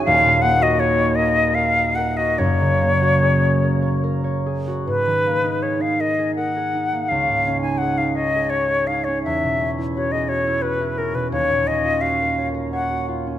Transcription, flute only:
\new Staff \with { instrumentName = "Flute" } { \time 3/4 \key gis \minor \tempo 4 = 83 eis''8 fis''16 dis''16 cis''8 dis''8 eis''8 fis''16 dis''16 | cis''2 r4 | b'4 cis''16 eis''16 dis''8 fis''4 | eis''8. gis''16 fis''16 eis''16 dis''8 cis''8 eis''16 cis''16 |
e''4 cis''16 dis''16 cis''8 b'8 ais'16 b'16 | cis''8 dis''8 eis''8. r16 fis''8 r8 | }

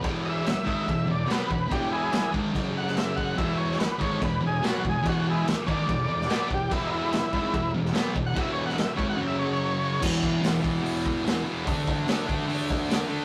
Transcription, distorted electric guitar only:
\new Staff \with { instrumentName = "Distorted electric guitar" } { \clef bass \time 4/4 \key e \mixolydian \tempo 4 = 145 <e, b, e>4 r8 <gis, dis gis>8 <e, b,>8 <e, b,>8 <b, fis b>8 <e, b,>8 | <e, b, e>4 r8 <gis, dis gis>8 <fis, cis fis>2 | <e, b, e>4 r8 <gis, dis gis>8 <e, b,>8 <e, b,>8 <b, fis b>8 <e, b,>8 | <e, b, e>4 r8 <gis, dis gis>8 <e, b,>8 <e, b,>8 <b, fis b>8 <e, b,>8 |
<e, b, e>4 r8 <gis, dis gis>8 <e, b,>8 <e, b,>8 <b, fis b>8 <e, b,>8 | <e, b, e>4 r8 <gis, dis gis>8 <fis, cis fis>2 | <e, b, e>4 <e, b, e>8 <e, b, e>8 <e, b, e>4 <e, b, e>8 <e, b, e>8 | <d a d'>4 <d a d'>8 <d a d'>8 <d a d'>4 <d a d'>8 <d a d'>8 | }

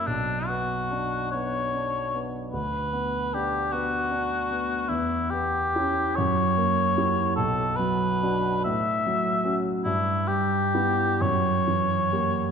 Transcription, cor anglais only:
\new Staff \with { instrumentName = "Cor anglais" } { \time 6/8 \key b \minor \tempo 4. = 49 d'8 fis'4 cis''4 r8 | b'4 g'8 fis'4. | e'8 g'4 cis''4. | a'8 b'4 e''4 r8 |
e'8 g'4 cis''4. | }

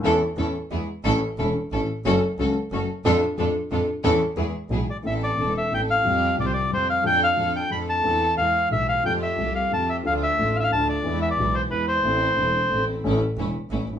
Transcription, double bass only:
\new Staff \with { instrumentName = "Double bass" } { \clef bass \time 3/4 \key a \major \tempo 4 = 180 e,8 r8 e,8 r8 e,8 r8 | a,,8 r8 e,,8 r8 a,,8 r8 | fis,,8 r8 cis,8 r8 fis,,8 r8 | f,8 r8 f,8 r8 f,8 r8 |
e,8 r8 e,8 r8 b,,8 r8 | \key a \minor a,,4 e,,4 a,,4 | f,4 c,4 f,4 | f,4 f,4 f,4 |
e,4 e,4 b,,4 | f,4 c,4 f,4 | d,4 a,,4 d,4 | e,4 b,,4 e,4 |
a,,4 e,,4 a,,4 | \key a \major a,,8 r8 e,,8 r8 a,,8 gis,,8 | }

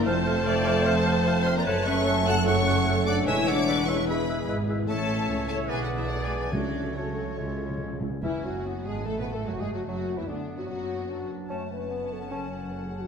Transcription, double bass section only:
\new Staff \with { instrumentName = "Double bass section" } { \clef bass \time 4/4 \key f \major \tempo 4 = 148 f,,1 | \key fis \minor fis,,1 | e,,2. gis,,4 | a,,4 cis,4 b,,2 |
cis,2 cis,4. r8 | e,,8 fis,,4 gis,,8 a,,8 r8 fis,,8 r8 | fis,,8. r16 d,8. r16 fis,,4. r8 | fis,,1 | }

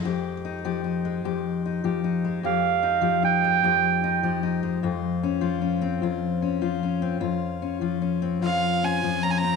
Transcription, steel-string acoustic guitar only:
\new Staff \with { instrumentName = "Steel-string acoustic guitar" } { \time 6/8 \key f \minor \tempo 4. = 50 << { <aes g'>8 ees'16 g'16 ees'16 aes16 g'8 ees'16 g'16 ees'16 aes16 | g'8 ees'16 g'16 ees'16 aes16 g'8 ees'16 g'16 ees'16 aes16 | f'8 des'16 f'16 des'16 c'16 f'8 des'16 f'16 des'16 c'16 | f'8 des'16 f'16 des'16 c'16 f'8 des'16 f'16 des'16 c'16 | } \\ { f,8. f8. f,8. f8. | f,8. f8. f,8. f8. | f,8. f8. f,8. f8. | f,8. f8. f,8. f8. | } >> }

